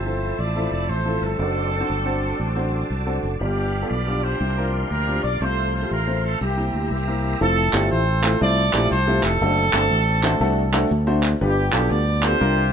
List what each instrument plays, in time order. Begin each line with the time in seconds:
Already playing: fingered electric bass G1, tonewheel organ F3 C5 E5 A5, string section F3 A3 C4 E4, horn section C4 E4 A4 C5
0.06 grand piano C4 E4 F4 A4
0.39 fingered electric bass A1, horn section A4 D5
0.56 grand piano C4 E4 F4 A4
0.71 fingered electric bass F1, horn section D5
0.89 fingered electric bass A1, horn section C5
1.05 grand piano C4 E4 F4 A4
1.22 fingered electric bass G1, horn section C4 D4 A4
1.39 fingered electric bass F#1, string section F#3 D4, grand piano C4 D4 F#4 A4, tonewheel organ F#4 D5 A5
1.80 grand piano C4 D4 F#4 C5
1.90 fingered electric bass G1
2.06 grand piano C4 D4 F#4 C5
2.40 fingered electric bass A1
2.56 grand piano C4 D4 F#4 C5
2.90 fingered electric bass C2
3.06 grand piano C4 D4 F#4 A4
3.23 fingered electric bass F#1
3.39 fingered electric bass G1, grand piano G2 B3 D4 F4 G4, string section F3 G3 B3 D4, horn section B3 D4 G4, tonewheel organ G4 F5 B5
3.82 grand piano B3 D4 F4 A4
3.90 fingered electric bass B1, horn section D5
4.07 grand piano B3 D4 F4 G4
4.23 horn section F4 G4 C5
4.40 fingered electric bass C2, grand piano C3, string section A#3 C4, tonewheel organ A#4 F5 C6
4.58 grand piano C4 D4 F4 A#4
4.91 fingered electric bass D2, horn section A#4
5.07 grand piano C4 D4 F4 G4
5.23 fingered electric bass B1, horn section D5
5.41 fingered electric bass C2, grand piano C3 A3 C4 F4 A4, string section F3 A3 F4, horn section F4 A4 C5, tonewheel organ A4 C5
5.74 horn section C5
5.82 grand piano A3 C4 F4 G4
5.91 fingered electric bass A1, horn section A#4
6.07 grand piano A3 C4 F4 C5
6.24 horn section A4
6.41 fingered electric bass C2, grand piano C3, string section G3 A#3 C4 E4, horn section A#3 E4 G4, tonewheel organ G4 E5 A#5
6.57 grand piano A#3 C4 E4 G4
6.74 fingered electric bass D2
6.91 fingered electric bass C2, horn section A#3 E4 G4
7.07 grand piano A#3 C4 E4 A#4
7.41 fingered electric bass F1, grand piano A3 C4 E4 F4 A4, horn section C4 E4 A4
7.73 fingered electric bass G1, grand piano A3 C4 E4 F4 G4, clap
7.91 fingered electric bass A1, horn section E4 A4 C5
8.23 grand piano A3 C4 E4 F4 A4, clap
8.41 fingered electric bass C2, grand piano A3 C4 E4 F4 C5, horn section A4 D5
8.73 fingered electric bass A#1, grand piano A3 C4 E4 F4 G4, clap
8.91 fingered electric bass C2, horn section C5
9.07 grand piano A3 C4 E4 F4 G4
9.23 fingered electric bass F1, horn section C4 D4 A4, clap
9.41 fingered electric bass F#1, grand piano A3 C4 D4 F#4 A4
9.73 fingered electric bass G1, grand piano A3 C4 D4 F#4 A4, clap
9.91 fingered electric bass A1
10.24 grand piano A3 C4 D4 F#4 C5, clap
10.40 fingered electric bass C2, grand piano A3 C4 D4 F#4 A4
10.73 grand piano A3 C4 D4 F#4 A4, clap
10.91 fingered electric bass D2
11.07 grand piano A3 C4 D4 F#4 C5
11.23 clap
11.41 fingered electric bass G1, grand piano G2 B3 D4 F4 G4 B4, horn section B3 D4 G4
11.73 fingered electric bass B1, grand piano B3 D4 F4 G4 A4, horn section G4, clap
11.90 fingered electric bass D2, horn section D5
12.23 grand piano B3 D4 F4 G4 A4, horn section F4 G4 C5, clap
12.41 fingered electric bass C2, grand piano C3 C4 D4 F4 G4 A#4